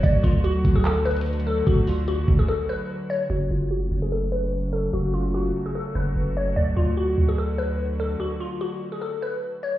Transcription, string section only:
\new Staff \with { instrumentName = "String section" } { \clef bass \time 4/4 \key fis \minor \tempo 4 = 147 << { <fis a fis'>1~ | <fis a fis'>1 | <fis a fis'>1~ | <fis a fis'>1~ |
<fis a fis'>1~ | <fis a fis'>1 | } \\ { d1~ | d1 | cis1~ | cis1 |
d1~ | d1 | } >> }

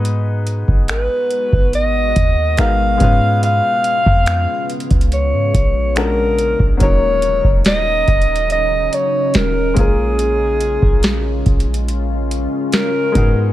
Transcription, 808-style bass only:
\new Staff \with { instrumentName = "808-style bass" } { \clef bass \time 4/4 \key ees \minor \tempo 4 = 71 aes,8. aes,,8 r8 aes,,8. ees,8 aes,,8 aes,8~ | aes,16 r8 f,8 r8 des,8 aes,16 bes,,4~ bes,,16 bes,,16 | ees,,8. ees,,8. ees,,4 r8 ees,,8 bes,,8~ | bes,,8. bes,,8. bes,,4~ bes,,16 r8. aes,8 | }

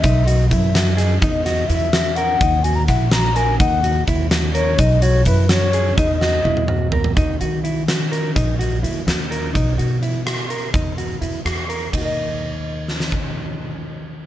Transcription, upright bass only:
\new Staff \with { instrumentName = "Upright bass" } { \clef bass \time 5/8 \key ees \phrygian \tempo 4 = 126 b,,4 fis,4. | e,4 e,4. | ees,4 bes,,4. | ees,4 ees,4. |
b,,4 fis,4. | e,4 e,4. | ees,8 ees2 | bes,,4 ees,8 ees,4 |
b,,8 b,2 | e,4 e,8 e,4 | ees,2~ ees,8~ | ees,2~ ees,8 | }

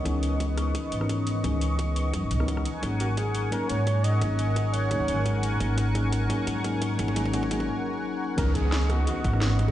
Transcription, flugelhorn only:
\new Staff \with { instrumentName = "Flugelhorn" } { \time 4/4 \key cis \dorian \tempo 4 = 173 r1 | r1 | r8 fis'8 gis'4 ais'8 cis''4 dis''8~ | dis''4. cis''2 r8 |
r1 | r1 | ais'8 gis'4 fis'8 fis'2 | }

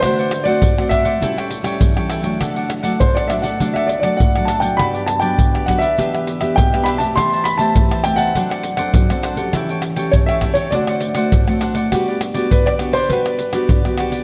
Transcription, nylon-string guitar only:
\new Staff \with { instrumentName = "Nylon-string guitar" } { \time 4/4 \key d \mixolydian \tempo 4 = 101 << { <a c' fis'>8 r16 <a c' fis'>8 <a c' fis'>8. <g cis' e'>8 r16 <g cis' e'>8 <g cis' e'>8 <fis a d'>16~ | <fis a d'>8. <fis a d'>8. <fis a d'>16 r16 <fis a d'>8 r16 <fis a d'>8 <fis a d'>8 <fis b d'>16~ | <fis b d'>8. <fis b d'>8. <fis b d'>16 r16 <b d' g'>8. <b d' g'>8 <b d' g'>8 <a c' g'>16~ | <a c' g'>8. <a c' g'>8. <a c' g'>8 <c' d' a'>8 r16 <c' d' a'>8 <c' d' a'>8 <cis' g' a'>16~ |
<cis' g' a'>8. <cis' g' a'>8. <cis' g' a'>8 <a c' fis'>8. <a c' fis'>8 <a c' fis'>8. | <b d' fis'>8. <b d' fis'>8. <b d' fis'>16 r16 <b d' fis'>8 r16 <b d' fis'>8 <b d' fis'>8. | } \\ { d4 a,4 a,4 e4 | d4 a,4 d4 a,4 | g,4 d4 e4 r4 | e4 e4 fis4 fis4 |
e4 e4 d4 a,4 | g4 d4 g4 d4 | } >> }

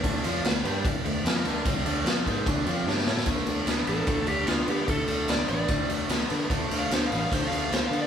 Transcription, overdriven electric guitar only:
\new Staff \with { instrumentName = "Overdriven electric guitar" } { \time 4/4 \key d \minor \tempo 4 = 148 <d a d'>8 <f c' f'>8 <d a>8 <g d' g'>8 r8 <d a>8 <f c' f'>8 <d a d'>8 | <c g c'>8 <d a d'>8 <f c' f'>8 <gis ees' gis'>8 <d a d'>8 <f c' f'>8 <g d' g'>8 <a e' a'>8 | <d a>4 <d b>8 <d b>8 <d a>4 <d b>8 <d b>8 | <d a>4 <d b>8 <d b>8 <d a>4 <d b>8 <d b>8 |
<d a>4 <d b>8 <d b>8 <d a>4 <d b>8 <d b>8 | }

